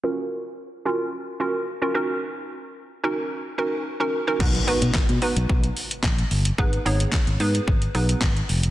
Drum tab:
CC |----------------|----------------|x---------------|----------------|
HH |----------------|----------------|-xox-xox-xox-xox|-xox-xox-xox-xox|
CP |----------------|----------------|----x-------x---|----x-------x---|
SD |----------------|----------------|----o-------o---|----o-------o---|
BD |----------------|----------------|o---o---o---o---|o---o---o---o---|